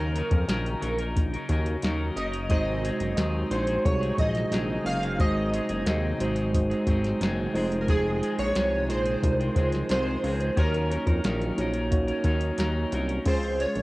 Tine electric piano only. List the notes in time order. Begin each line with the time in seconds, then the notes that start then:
2.49 G#3 D#4 F#4 C5
3.50 G#3 D#4 F#4 C5
3.84 G#3 D#4 F#4 G#4
5.18 G#3 D#4 F#4 C5
6.19 G#3 D#4 F#4 C5
6.52 G#3 D#4 F#4 C5
7.53 G#3 D#4 F4 C5
8.88 G#3 D#4 F4 G#4
9.21 G#3 D#4 F4 A#4
9.30 C5
10.56 A#3 D#4 F#4 C#5
11.57 A#3 D#4 F#4 C#5
11.91 A#3 D#4 F#4 C#5
13.25 G#3 C#4 F4 G#4